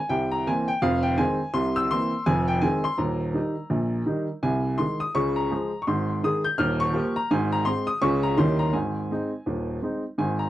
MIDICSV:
0, 0, Header, 1, 2, 480
1, 0, Start_track
1, 0, Key_signature, -4, "major"
1, 0, Tempo, 359281
1, 155, Time_signature, 4, 2, 24, 8
1, 14021, End_track
2, 0, Start_track
2, 0, Title_t, "Upright piano"
2, 0, Program_c, 0, 0
2, 0, Note_on_c, 0, 80, 74
2, 125, Note_on_c, 0, 79, 85
2, 130, Note_on_c, 0, 36, 57
2, 132, Note_on_c, 0, 48, 63
2, 142, Note_off_c, 0, 80, 0
2, 402, Control_c, 0, 64, 127
2, 421, Note_on_c, 0, 82, 86
2, 432, Note_off_c, 0, 79, 0
2, 549, Note_off_c, 0, 36, 0
2, 550, Note_off_c, 0, 48, 0
2, 622, Note_off_c, 0, 82, 0
2, 629, Note_on_c, 0, 52, 41
2, 629, Note_on_c, 0, 58, 39
2, 632, Note_on_c, 0, 80, 86
2, 635, Note_on_c, 0, 60, 46
2, 650, Control_c, 0, 64, 0
2, 894, Note_off_c, 0, 58, 0
2, 895, Note_off_c, 0, 52, 0
2, 899, Note_off_c, 0, 60, 0
2, 906, Note_on_c, 0, 79, 89
2, 925, Note_off_c, 0, 80, 0
2, 1096, Note_on_c, 0, 77, 93
2, 1097, Note_on_c, 0, 41, 86
2, 1101, Note_on_c, 0, 29, 66
2, 1105, Note_off_c, 0, 79, 0
2, 1356, Control_c, 0, 64, 127
2, 1371, Note_on_c, 0, 79, 85
2, 1397, Note_off_c, 0, 77, 0
2, 1513, Note_off_c, 0, 41, 0
2, 1515, Note_off_c, 0, 29, 0
2, 1571, Note_on_c, 0, 51, 43
2, 1573, Note_on_c, 0, 80, 92
2, 1577, Note_off_c, 0, 79, 0
2, 1579, Note_on_c, 0, 56, 45
2, 1584, Note_on_c, 0, 60, 60
2, 1613, Control_c, 0, 64, 0
2, 1842, Note_off_c, 0, 51, 0
2, 1848, Note_off_c, 0, 56, 0
2, 1851, Note_off_c, 0, 60, 0
2, 2052, Note_on_c, 0, 84, 92
2, 2053, Note_on_c, 0, 36, 61
2, 2054, Note_on_c, 0, 48, 67
2, 2064, Note_off_c, 0, 80, 0
2, 2316, Control_c, 0, 64, 127
2, 2351, Note_on_c, 0, 88, 108
2, 2356, Note_off_c, 0, 84, 0
2, 2471, Note_off_c, 0, 36, 0
2, 2471, Note_off_c, 0, 48, 0
2, 2547, Note_off_c, 0, 88, 0
2, 2548, Note_on_c, 0, 52, 37
2, 2548, Note_on_c, 0, 84, 102
2, 2563, Note_on_c, 0, 58, 41
2, 2567, Note_on_c, 0, 60, 44
2, 2573, Control_c, 0, 64, 0
2, 2814, Note_off_c, 0, 52, 0
2, 2825, Note_off_c, 0, 58, 0
2, 2828, Note_off_c, 0, 60, 0
2, 3022, Note_on_c, 0, 80, 101
2, 3024, Note_on_c, 0, 41, 71
2, 3031, Note_on_c, 0, 29, 80
2, 3032, Note_off_c, 0, 84, 0
2, 3271, Control_c, 0, 64, 127
2, 3310, Note_on_c, 0, 79, 92
2, 3321, Note_off_c, 0, 80, 0
2, 3437, Note_off_c, 0, 41, 0
2, 3441, Note_off_c, 0, 29, 0
2, 3494, Note_on_c, 0, 80, 90
2, 3498, Note_on_c, 0, 56, 45
2, 3499, Note_on_c, 0, 51, 48
2, 3507, Note_off_c, 0, 79, 0
2, 3517, Note_on_c, 0, 60, 46
2, 3537, Control_c, 0, 64, 0
2, 3767, Note_off_c, 0, 56, 0
2, 3768, Note_off_c, 0, 51, 0
2, 3780, Note_off_c, 0, 60, 0
2, 3793, Note_on_c, 0, 84, 96
2, 3797, Note_off_c, 0, 80, 0
2, 3978, Note_on_c, 0, 82, 67
2, 3979, Note_on_c, 0, 27, 53
2, 3984, Note_on_c, 0, 39, 63
2, 3989, Note_off_c, 0, 84, 0
2, 4224, Control_c, 0, 64, 127
2, 4395, Note_off_c, 0, 27, 0
2, 4397, Note_off_c, 0, 39, 0
2, 4463, Note_on_c, 0, 51, 35
2, 4468, Note_on_c, 0, 55, 36
2, 4471, Note_on_c, 0, 63, 41
2, 4495, Control_c, 0, 64, 0
2, 4731, Note_off_c, 0, 51, 0
2, 4735, Note_off_c, 0, 55, 0
2, 4737, Note_off_c, 0, 63, 0
2, 4943, Note_on_c, 0, 34, 58
2, 4948, Note_on_c, 0, 46, 57
2, 5357, Note_off_c, 0, 34, 0
2, 5360, Note_off_c, 0, 46, 0
2, 5425, Note_on_c, 0, 51, 44
2, 5434, Note_on_c, 0, 63, 39
2, 5439, Note_on_c, 0, 55, 40
2, 5693, Note_off_c, 0, 51, 0
2, 5699, Note_off_c, 0, 63, 0
2, 5703, Note_off_c, 0, 55, 0
2, 5720, Note_off_c, 0, 82, 0
2, 5912, Note_on_c, 0, 48, 50
2, 5915, Note_on_c, 0, 80, 77
2, 5918, Note_on_c, 0, 36, 60
2, 6160, Control_c, 0, 64, 127
2, 6323, Note_off_c, 0, 48, 0
2, 6326, Note_off_c, 0, 36, 0
2, 6382, Note_on_c, 0, 84, 80
2, 6392, Note_on_c, 0, 51, 37
2, 6392, Note_on_c, 0, 56, 38
2, 6397, Note_off_c, 0, 80, 0
2, 6399, Note_on_c, 0, 68, 42
2, 6415, Control_c, 0, 64, 0
2, 6658, Note_off_c, 0, 51, 0
2, 6658, Note_off_c, 0, 56, 0
2, 6663, Note_off_c, 0, 68, 0
2, 6682, Note_off_c, 0, 84, 0
2, 6682, Note_on_c, 0, 87, 89
2, 6874, Note_off_c, 0, 87, 0
2, 6876, Note_on_c, 0, 85, 94
2, 6880, Note_on_c, 0, 37, 60
2, 6882, Note_on_c, 0, 49, 76
2, 7096, Control_c, 0, 64, 127
2, 7161, Note_on_c, 0, 82, 78
2, 7169, Note_off_c, 0, 85, 0
2, 7288, Note_off_c, 0, 37, 0
2, 7289, Note_off_c, 0, 49, 0
2, 7359, Note_on_c, 0, 53, 41
2, 7370, Note_on_c, 0, 56, 45
2, 7370, Note_on_c, 0, 68, 47
2, 7379, Control_c, 0, 64, 0
2, 7623, Note_off_c, 0, 53, 0
2, 7631, Note_off_c, 0, 56, 0
2, 7631, Note_off_c, 0, 68, 0
2, 7761, Note_off_c, 0, 82, 0
2, 7776, Note_on_c, 0, 85, 64
2, 7844, Note_off_c, 0, 85, 0
2, 7846, Note_on_c, 0, 84, 70
2, 7848, Note_on_c, 0, 32, 56
2, 7851, Note_on_c, 0, 44, 64
2, 8080, Control_c, 0, 64, 127
2, 8252, Note_off_c, 0, 32, 0
2, 8254, Note_off_c, 0, 44, 0
2, 8323, Note_off_c, 0, 84, 0
2, 8327, Note_on_c, 0, 51, 45
2, 8336, Note_on_c, 0, 56, 47
2, 8337, Control_c, 0, 64, 0
2, 8340, Note_on_c, 0, 87, 88
2, 8341, Note_on_c, 0, 68, 50
2, 8589, Note_off_c, 0, 51, 0
2, 8596, Note_off_c, 0, 56, 0
2, 8599, Note_off_c, 0, 68, 0
2, 8611, Note_on_c, 0, 91, 89
2, 8622, Note_off_c, 0, 87, 0
2, 8793, Note_on_c, 0, 89, 96
2, 8799, Note_off_c, 0, 91, 0
2, 8799, Note_on_c, 0, 27, 72
2, 8803, Note_on_c, 0, 39, 81
2, 9037, Control_c, 0, 64, 127
2, 9085, Note_on_c, 0, 85, 101
2, 9088, Note_off_c, 0, 89, 0
2, 9208, Note_off_c, 0, 27, 0
2, 9210, Note_off_c, 0, 39, 0
2, 9262, Note_on_c, 0, 53, 49
2, 9272, Note_on_c, 0, 67, 58
2, 9278, Note_on_c, 0, 58, 49
2, 9301, Control_c, 0, 64, 0
2, 9531, Note_off_c, 0, 53, 0
2, 9539, Note_off_c, 0, 67, 0
2, 9543, Note_off_c, 0, 58, 0
2, 9567, Note_on_c, 0, 82, 93
2, 9568, Note_off_c, 0, 85, 0
2, 9758, Note_off_c, 0, 82, 0
2, 9765, Note_on_c, 0, 44, 79
2, 9765, Note_on_c, 0, 80, 81
2, 9768, Note_on_c, 0, 32, 62
2, 9987, Control_c, 0, 64, 127
2, 10053, Note_on_c, 0, 82, 104
2, 10055, Note_off_c, 0, 80, 0
2, 10171, Note_off_c, 0, 44, 0
2, 10173, Note_off_c, 0, 32, 0
2, 10222, Note_on_c, 0, 84, 94
2, 10229, Note_on_c, 0, 56, 53
2, 10232, Note_on_c, 0, 60, 44
2, 10241, Note_off_c, 0, 82, 0
2, 10242, Note_on_c, 0, 68, 52
2, 10258, Control_c, 0, 64, 0
2, 10496, Note_off_c, 0, 56, 0
2, 10499, Note_off_c, 0, 60, 0
2, 10506, Note_off_c, 0, 68, 0
2, 10513, Note_on_c, 0, 87, 99
2, 10523, Note_off_c, 0, 84, 0
2, 10706, Note_on_c, 0, 56, 49
2, 10709, Note_on_c, 0, 85, 102
2, 10711, Note_off_c, 0, 87, 0
2, 10713, Note_on_c, 0, 49, 89
2, 10714, Note_on_c, 0, 37, 67
2, 10715, Note_on_c, 0, 61, 51
2, 10724, Note_on_c, 0, 65, 42
2, 10974, Note_off_c, 0, 56, 0
2, 10975, Control_c, 0, 64, 127
2, 10980, Note_off_c, 0, 61, 0
2, 10987, Note_off_c, 0, 65, 0
2, 10997, Note_on_c, 0, 82, 99
2, 11007, Note_off_c, 0, 85, 0
2, 11124, Note_off_c, 0, 49, 0
2, 11125, Note_off_c, 0, 37, 0
2, 11189, Note_on_c, 0, 51, 77
2, 11190, Note_on_c, 0, 84, 83
2, 11193, Note_off_c, 0, 82, 0
2, 11194, Note_on_c, 0, 39, 61
2, 11198, Note_on_c, 0, 55, 41
2, 11201, Note_on_c, 0, 61, 41
2, 11211, Control_c, 0, 64, 0
2, 11214, Note_on_c, 0, 64, 44
2, 11454, Control_c, 0, 64, 127
2, 11462, Note_off_c, 0, 55, 0
2, 11465, Note_off_c, 0, 61, 0
2, 11474, Note_off_c, 0, 64, 0
2, 11477, Note_on_c, 0, 82, 87
2, 11487, Note_off_c, 0, 84, 0
2, 11602, Note_off_c, 0, 51, 0
2, 11605, Note_off_c, 0, 39, 0
2, 11666, Note_on_c, 0, 80, 57
2, 11667, Note_on_c, 0, 44, 52
2, 11668, Note_on_c, 0, 32, 51
2, 11673, Note_off_c, 0, 82, 0
2, 11691, Control_c, 0, 64, 0
2, 11919, Control_c, 0, 64, 127
2, 12080, Note_off_c, 0, 44, 0
2, 12081, Note_off_c, 0, 32, 0
2, 12166, Note_on_c, 0, 56, 30
2, 12170, Note_on_c, 0, 60, 37
2, 12179, Control_c, 0, 64, 0
2, 12183, Note_on_c, 0, 63, 44
2, 12428, Note_off_c, 0, 56, 0
2, 12431, Note_off_c, 0, 60, 0
2, 12440, Note_off_c, 0, 63, 0
2, 12643, Note_on_c, 0, 39, 50
2, 12647, Note_on_c, 0, 27, 57
2, 13049, Note_off_c, 0, 39, 0
2, 13052, Note_off_c, 0, 27, 0
2, 13112, Note_off_c, 0, 80, 0
2, 13123, Note_on_c, 0, 56, 30
2, 13124, Note_on_c, 0, 60, 34
2, 13137, Note_on_c, 0, 63, 40
2, 13386, Note_off_c, 0, 56, 0
2, 13387, Note_off_c, 0, 60, 0
2, 13396, Note_off_c, 0, 63, 0
2, 13601, Note_on_c, 0, 44, 60
2, 13605, Note_on_c, 0, 32, 52
2, 13607, Note_on_c, 0, 80, 68
2, 13850, Control_c, 0, 64, 127
2, 13882, Note_on_c, 0, 82, 76
2, 13894, Note_off_c, 0, 80, 0
2, 14008, Note_off_c, 0, 44, 0
2, 14010, Note_off_c, 0, 32, 0
2, 14021, Note_off_c, 0, 82, 0
2, 14021, End_track
0, 0, End_of_file